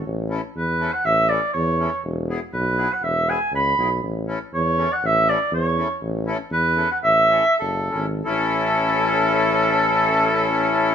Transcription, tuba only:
\new Staff \with { instrumentName = "Tuba" } { \clef bass \time 2/4 \key a \major \tempo 4 = 120 a,,4 e,4 | a,,4 e,4 | e,,4 b,,4 | e,,4 cis,8 b,,8 |
a,,4 e,4 | a,,4 e,4 | a,,4 e,4 | a,,4 fis,,8 gis,,8 |
a,,2~ | a,,2 | }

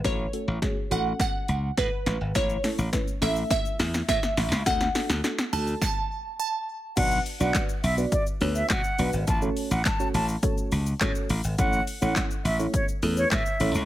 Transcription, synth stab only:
\new Staff \with { instrumentName = "Synth stab" } { \time 4/4 \key fis \minor \tempo 4 = 104 <a cis' fis' a'>16 r16 <a cis' fis' a'>16 r16 <a cis' fis' gis'>16 r16 <a cis' fis' a'>4 r4. | <a cis' e' a'>16 r16 <a cis' e' a'>16 r16 <a cis' e' b'>16 r16 <a cis' e' a'>4 r4. | <a d' fis' a'>16 r16 <a d' fis' a'>16 r16 <a d' fis' a'>16 r16 <a d' fis' a'>8 r2 | <b d' fis' b' d''>16 r8 <b d' fis' b' d''>8 r8 <b d' fis' b' d''>16 r8 <b d' fis' b' cis''>8 r8 <b d' fis' b' d''>16 r16 |
r16 <a cis' fis' a' cis''>8 r8 <a cis' fis' a' cis''>16 r8 <a cis' fis' a' cis''>8 r8 <a cis' fis' a' cis''>8 r8 | <a cis' e' a' cis''>16 r8 <a cis' e' a' cis''>8 r8 <a cis' e' a' cis''>16 r8 <a cis' e' a' b'>8 r8 <a cis' e' a' cis''>16 r16 | }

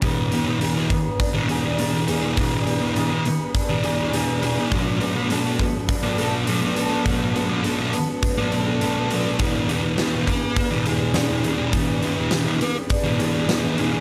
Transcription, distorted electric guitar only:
\new Staff \with { instrumentName = "Distorted electric guitar" } { \clef bass \time 4/4 \key e \mixolydian \tempo 4 = 103 <e, b, e>8 <e, b, e>16 <b, e>16 <e, b, e>16 <b, e>8. r16 <b, e>16 <e, b, e>8 <e, b, e>16 <b, e>16 <e, b, e>16 <b, e>16 | <e, b, e>8 <e, b, e>16 <b, e>16 <e, b, e>16 <b, e>8. r16 <b, e>16 <e, b, e>8 <e, b, e>16 <b, e>16 <e, b, e>16 <b, e>16 | <b, fis b>8 <b, fis b>16 <fis b>16 <b, fis b>16 <fis b>8. r16 <fis b>16 <b, fis b>8 <b, fis b>16 <fis b>16 <b, fis b>16 <fis b>16 | <b, fis b>8 <b, fis b>16 <fis b>16 <b, fis b>16 <fis b>8. r16 <fis b>16 <b, fis b>8 <b, fis b>16 <fis b>16 <b, fis b>16 <fis b>16 |
<e, b, e>8 <e, b, e>16 <b, e>16 <e, b, e>16 <b, e>8. r16 <b, e>16 <e, b, e>8 <e, b, e>16 <b, e>16 <e, b, e>16 <b, e>16 | <e, b, e>8 <e, b, e>16 <b, e>16 <e, b, e>16 <b, e>8. r16 <b, e>16 <e, b, e>8 <e, b, e>16 <b, e>16 <e, b, e>16 <b, e>16 | }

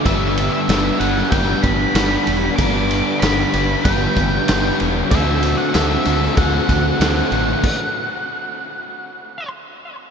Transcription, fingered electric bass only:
\new Staff \with { instrumentName = "Fingered electric bass" } { \clef bass \time 4/4 \key g \major \tempo 4 = 95 g,,4 g,,8 g,,8 g,,8 g,,8 g,,8 e,,8 | g,,4 g,,8 g,,8 g,,8 g,,8 g,,8 e,,8 | d,4 d,8 d,8 d,8 d,8 d,8 a,,8 | r1 | }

